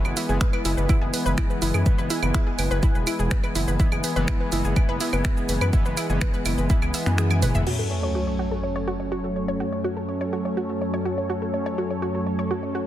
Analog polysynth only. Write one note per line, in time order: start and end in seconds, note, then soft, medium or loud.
0.00 0.26 E3 medium
0.00 0.26 G#3 medium
0.00 0.26 B3 medium
0.29 1.83 E3 medium
0.29 1.83 G#3 medium
0.29 1.83 B3 loud
1.86 2.20 E3 medium
1.86 2.20 G#3 medium
1.86 2.20 B3 medium
2.23 3.77 E3 medium
2.23 3.77 G#3 medium
2.23 3.77 B3 medium
3.80 4.13 E3 medium
3.80 4.13 G#3 medium
3.80 4.13 B3 medium
4.16 5.70 E3 medium
4.16 5.70 G#3 medium
4.16 5.70 B3 loud
5.73 6.07 E3 medium
5.73 6.07 G#3 medium
5.73 6.07 B3 loud
6.10 7.64 E3 medium
6.10 7.64 G#3 medium
6.10 7.64 B3 medium
7.67 11.51 F#3 medium
7.67 11.51 A3 medium
7.67 11.51 C#4 medium
11.54 12.87 F#3 medium
11.54 12.87 A3 medium
11.54 12.87 C#4 medium